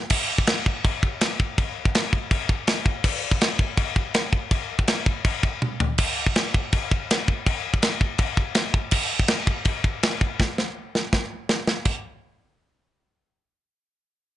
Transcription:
0.10 kick, crash, china
0.38 kick
0.47 snare, china
0.66 kick
0.84 kick, china
1.03 kick
1.21 snare, china
1.40 kick
1.58 kick, china
1.85 kick
1.95 snare, china
2.13 kick
2.31 kick, china
2.49 kick
2.67 snare, china
2.86 kick
3.04 kick, china, crash
3.31 kick
3.41 snare, china
3.59 kick
3.77 kick, china
3.96 kick
4.14 snare, china
4.33 kick
4.51 kick, china
4.79 kick
4.87 snare, china
5.06 kick
5.25 kick, china
5.43 kick
5.62 high tom
5.80 floor tom
5.98 kick, crash, china
6.26 kick
6.35 snare, china
6.54 kick
6.72 kick, china
6.91 kick
7.10 snare, china
7.28 kick
7.46 kick, china
7.74 kick
7.82 snare, china
8.01 kick
8.18 kick, china
8.37 kick
8.55 snare, china
8.74 kick
8.91 kick, crash, china
9.19 kick
9.28 snare, china
9.47 kick
9.65 kick, china
9.84 kick
10.03 snare, china
10.21 kick
10.40 kick, snare
10.58 snare
10.95 snare
11.13 kick, snare
11.49 snare
11.67 snare
11.85 kick, crash

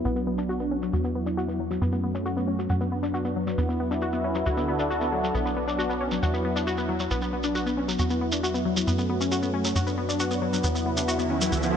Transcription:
Already playing: F#3 B3
0.05 B1 B3 D4, shekere
0.16 B3, shekere
0.27 B3
0.38 D4, shekere
0.49 F#4, shekere
0.60 B3, shekere
0.71 C#4
0.82 F#3, shekere
0.93 E2 E4 F#4, shekere
1.04 B3, shekere
1.15 B3
1.26 D4, shekere
1.37 F#4, shekere
1.49 B3, shekere
1.60 F#3
1.71 F#3, shekere
1.82 F#2 A3 B3 C#4, shekere
1.92 B3, shekere
2.04 B3
2.15 C#4, shekere
2.26 F#4, shekere
2.37 B3, shekere
2.48 C#4
2.59 F#3, shekere
2.69 F#2 B3 D4 F#4, shekere
2.81 B3, shekere
2.92 B3
3.03 D4, shekere
3.14 F#4, shekere
3.25 B3, shekere
3.36 F#3
3.47 F#3, shekere
3.58 E2 B3 E4, shekere
3.69 B3, shekere
3.80 B3
3.91 D4, shekere
4.01 F#4, shekere
4.12 B3, shekere
4.24 C#4
4.35 F#3, shekere
4.46 D2 D3 D4 F#4 A4, shekere
4.57 B3, shekere
4.68 B3
4.79 D4, shekere
4.90 F#4, shekere
5.01 B3, shekere
5.12 F#3
5.24 F#3, shekere
5.34 B1 F#3 B3 D4, shekere
5.46 B3, shekere
5.57 B3
5.68 D4, shekere
5.79 F#4, shekere
5.90 B3, shekere
6.01 C#4
6.11 F#3, shekere
6.23 E2 E4 F#4, shekere
6.34 B3, shekere
6.45 B3
6.56 D4, shekere
6.67 F#4, shekere
6.78 B3, shekere
6.89 F#3
6.99 F#3, shekere
7.11 B1 B3 D4, shekere
7.22 B3, shekere
7.33 B3
7.43 D4, shekere
7.55 F#4, shekere
7.66 B3, shekere
7.77 C#4
7.88 F#3, shekere
7.99 E2 E4 F#4, shekere
8.10 B3, shekere
8.21 B3
8.32 D4, shekere
8.43 F#4, shekere
8.54 B3, shekere
8.65 F#3
8.76 F#3, shekere
8.87 F#2 A3 B3 C#4, shekere
8.98 B3, shekere
9.10 B3
9.21 C#4, shekere
9.32 F#4, shekere
9.43 B3, shekere
9.54 C#4
9.65 F#3, shekere
9.76 F#2 B3 D4 F#4, shekere
9.87 B3, shekere
9.98 B3
10.09 D4, shekere
10.20 F#4, shekere
10.31 B3, shekere
10.42 F#3
10.53 F#3, shekere
10.64 E2 B3 E4, riser, shekere
10.75 B3, shekere
10.86 B3
10.97 D4, shekere
11.08 F#4, shekere
11.19 B3, shekere
11.30 C#4
11.41 F#3, shekere
11.52 D2 D3 D4 F#4 A4, shekere
11.63 B3, shekere

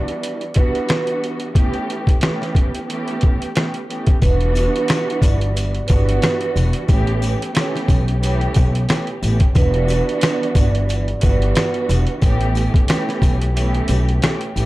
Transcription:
Already playing: E3 G3 B3 D4 F#4 D5
0.08 closed hi-hat
0.23 closed hi-hat
0.41 closed hi-hat
0.54 E3 G3 B3 D4 F#4 B4, kick, closed hi-hat
0.75 closed hi-hat
0.89 B4, cross-stick, snare, closed hi-hat
1.07 closed hi-hat
1.24 closed hi-hat
1.40 closed hi-hat
1.53 E3 A3 B3 C#4 G4, kick, closed hi-hat
1.74 closed hi-hat
1.90 closed hi-hat
2.07 kick, closed hi-hat
2.20 E3 A3 B3 C#4 G4, cross-stick, snare, closed hi-hat
2.42 snare, closed hi-hat
2.55 kick, closed hi-hat
2.75 closed hi-hat
2.86 E3 A3 B3 C#4 G4, closed hi-hat
3.08 closed hi-hat
3.21 kick, closed hi-hat
3.42 closed hi-hat
3.54 E3 A3 B3 C#4 G4, cross-stick, snare, closed hi-hat
3.74 closed hi-hat
3.88 E3 A3 B3 C#4 G4, closed hi-hat
4.07 kick, closed hi-hat
4.20 E1 E3 G3 B3 D4 F#4 B4, kick, closed hi-hat, sleigh bells
4.41 closed hi-hat
4.55 closed hi-hat, sleigh bells
4.76 closed hi-hat
4.88 cross-stick, snare, closed hi-hat, sleigh bells
5.10 closed hi-hat
5.21 G1 D5, kick, closed hi-hat, sleigh bells
5.41 closed hi-hat
5.56 closed hi-hat, sleigh bells
5.75 closed hi-hat
5.87 G1 E3 G3 B3 D4 F#4 B4, kick, closed hi-hat, sleigh bells
6.09 closed hi-hat
6.22 B4, cross-stick, snare, closed hi-hat, sleigh bells
6.41 closed hi-hat
6.56 E1, closed hi-hat, sleigh bells
6.73 closed hi-hat
6.86 A1 E3 A3 B3 C#4 G4, kick, closed hi-hat, sleigh bells
7.07 closed hi-hat
7.22 closed hi-hat, sleigh bells
7.42 closed hi-hat
7.53 E3 A3 B3 C#4 G4, snare, closed hi-hat, sleigh bells
7.57 cross-stick
7.76 snare, closed hi-hat
7.88 B1, kick, closed hi-hat, sleigh bells
8.08 closed hi-hat
8.20 E3 A3 B3 C#4 G4, closed hi-hat, sleigh bells
8.41 closed hi-hat
8.54 B1, kick, closed hi-hat, sleigh bells
8.75 closed hi-hat
8.88 E3 A3 B3 C#4 G4, cross-stick, snare, closed hi-hat, sleigh bells
9.07 closed hi-hat
9.21 A1 E3 A3 B3 C#4 G4, closed hi-hat, sleigh bells
9.40 kick, closed hi-hat
9.54 E1 E3 G3 B3 D4 F#4 B4, kick, closed hi-hat, sleigh bells
9.74 closed hi-hat
9.88 closed hi-hat, sleigh bells
10.09 closed hi-hat
10.21 cross-stick, snare, closed hi-hat, sleigh bells
10.43 closed hi-hat
10.55 G1 D5, kick, closed hi-hat, sleigh bells
10.75 closed hi-hat
10.89 closed hi-hat, sleigh bells
11.08 closed hi-hat
11.21 G1 E3 G3 B3 D4 F#4 B4, kick, closed hi-hat, sleigh bells
11.42 closed hi-hat
11.55 B4, cross-stick, snare, closed hi-hat, sleigh bells
11.74 closed hi-hat
11.89 E1, closed hi-hat, sleigh bells
12.07 closed hi-hat
12.20 A1 E3 A3 B3 C#4 G4, kick, closed hi-hat, sleigh bells
12.41 closed hi-hat
12.55 closed hi-hat, sleigh bells
12.74 kick, closed hi-hat
12.87 E3 A3 B3 C#4 G4, cross-stick, snare, closed hi-hat, sleigh bells
13.09 snare, closed hi-hat
13.22 B1, kick, closed hi-hat, sleigh bells
13.42 closed hi-hat
13.53 E3 A3 B3 C#4 G4, closed hi-hat, sleigh bells
13.75 closed hi-hat
13.88 B1, closed hi-hat, sleigh bells
14.09 closed hi-hat
14.21 E3 A3 B3 C#4 G4, cross-stick, snare, closed hi-hat, sleigh bells
14.41 closed hi-hat
14.54 A1 E3 A3 B3 C#4 G4, closed hi-hat, sleigh bells

